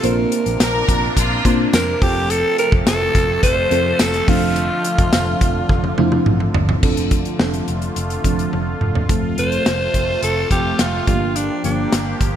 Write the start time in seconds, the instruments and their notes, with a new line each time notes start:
0.03 fingered electric bass A#1, analog synth pad C3 A#3 D4, fm electric piano A#3 C4 D4 F4 C5, alto saxophone A#4, closed hi-hat
0.32 closed hi-hat
0.46 fingered electric bass A#1, closed hi-hat
0.60 fingered electric bass A#1, violin section A#4, snare, closed hi-hat, tambourine
0.89 fingered electric bass A#1, kick, closed hi-hat
1.17 fingered electric bass A#1, violin section F4, kick, closed hi-hat
1.44 fingered electric bass A#2, fm electric piano A#3 C4 D4 F4 C5, kick, closed hi-hat
1.73 fingered electric bass F2, alto saxophone A#4, snare, closed hi-hat, tambourine
2.01 fingered electric bass F1, analog synth pad F3 A3, fm electric piano C4 F4 A4, alto saxophone G4, kick, open hi-hat
2.30 alto saxophone A4, closed hi-hat
2.58 alto saxophone A#4, closed hi-hat
2.72 fingered electric bass F1, kick
2.86 fingered electric bass F1, alto saxophone A4, snare, closed hi-hat, tambourine
3.15 fingered electric bass F1, kick, closed hi-hat
3.43 fingered electric bass F1, alto saxophone C5, kick, closed hi-hat
3.71 fingered electric bass F2, fm electric piano C4 F4 A4, closed hi-hat
3.99 fingered electric bass F1, alto saxophone A4, snare, closed hi-hat, tambourine
4.14 closed hi-hat
4.27 fingered electric bass F1, analog synth pad D3, fm electric piano F3 A3 C4 D4 A4, alto saxophone F4, kick, open hi-hat
4.56 closed hi-hat
4.84 closed hi-hat
4.98 fingered electric bass F1, kick, closed hi-hat
5.13 fingered electric bass F1, snare, closed hi-hat, tambourine
5.41 fingered electric bass F1, kick, closed hi-hat
5.69 fingered electric bass F1, kick, high tom
5.84 high tom
5.97 fingered electric bass F2, fm electric piano F3 A3 C4 D4 E4, mid tom
6.12 mid tom
6.26 fingered electric bass A1, mid tom
6.40 mid tom
6.54 fingered electric bass G1, floor tom
6.69 floor tom
6.82 fingered electric bass F1, analog synth pad D3 A3 F4, fm electric piano F3 C4 D4 A4, kick, crash
6.97 closed hi-hat
7.11 kick, closed hi-hat
7.25 closed hi-hat
7.39 fingered electric bass F1, fm electric piano F3 C4 D4 A4, snare
7.54 closed hi-hat
7.68 fingered electric bass F1, closed hi-hat
7.82 closed hi-hat
7.96 fingered electric bass F1, closed hi-hat
8.10 closed hi-hat
8.24 fingered electric bass F1, fm electric piano F3 C4 D4 A4, kick, closed hi-hat
8.39 closed hi-hat
8.53 fingered electric bass F1, high tom
8.81 fingered electric bass F1, mid tom
8.95 floor tom
9.09 fingered electric bass F1, analog synth pad C3 A3 F4, fm electric piano F3 A3 C4 A4, kick, closed hi-hat
9.37 fingered electric bass F1, fm electric piano F3 A3 C4 A4, alto saxophone C5, closed hi-hat
9.52 closed hi-hat
9.66 fingered electric bass F1, snare, closed hi-hat
9.94 fingered electric bass F1, kick, closed hi-hat
10.23 fingered electric bass F1, alto saxophone A4, closed hi-hat
10.50 fingered electric bass F1, fm electric piano F3 A3 C4 A4, alto saxophone G4, kick, closed hi-hat
10.79 fingered electric bass F1, alto saxophone F4, snare, closed hi-hat
11.07 fingered electric bass G1, fm electric piano F3 A3 D4 G4, analog synth pad F3 A#3 G4, alto saxophone F4, kick, closed hi-hat
11.14 fm electric piano A#3
11.36 alto saxophone D4, closed hi-hat
11.64 fingered electric bass G1, fm electric piano F3 A#3 D4 G4, alto saxophone D4, closed hi-hat
11.92 fingered electric bass G1, snare, closed hi-hat
12.21 fingered electric bass G1, kick, closed hi-hat